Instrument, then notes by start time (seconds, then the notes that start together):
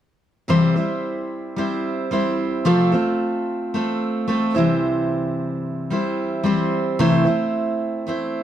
steel-string acoustic guitar
0.48 C3 E3 G3 C4 E4 C5
0.76 G3 C4 E4 C5
1.56 G3 C4 E4 C5
2.11 G3 C4 E4 C5
2.65 C3 F3 A3 C4 F4 A4
2.92 A3 C4 F4 A4
3.74 A3 C4 F4 A4
4.28 A3 C4 F4 A4
4.55 C3 E3 G3 C4 E4 C5
5.90 G3 C4 E4 C5
6.43 G3 C4 E4 C5
6.99 C3 E3 A3 C4 E4 C5
7.25 A3 C4 E4 C5
8.07 A3 C4 E4 C5